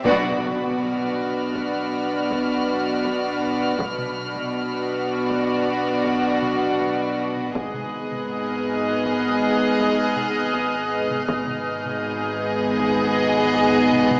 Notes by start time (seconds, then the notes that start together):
0.04 B1 B2 B3 D4 F#4 D5 B5, taiko, impact
0.81 F6
1.55 taiko
2.30 taiko
3.05 taiko
3.79 B1 B2 B3 D4 F#4 D5, taiko
3.98 taiko mid
4.35 taiko mid
5.30 taiko
6.05 taiko
6.42 taiko mid
6.80 taiko
7.36 taiko mid
7.54 G#1 G#2 B3 D#4 G#4 D#5 D#6 F#6, taiko
7.74 taiko mid
8.12 taiko mid
8.30 F6
9.05 taiko
9.79 taiko
10.16 taiko mid
10.54 taiko
11.10 taiko mid
11.28 G#1 G#2 B3 D#4 G#4 D#5, taiko
11.48 taiko mid
11.75 G6
11.85 taiko mid
12.79 taiko
13.06 F#6
13.54 taiko
13.92 taiko mid
14.11 taiko mid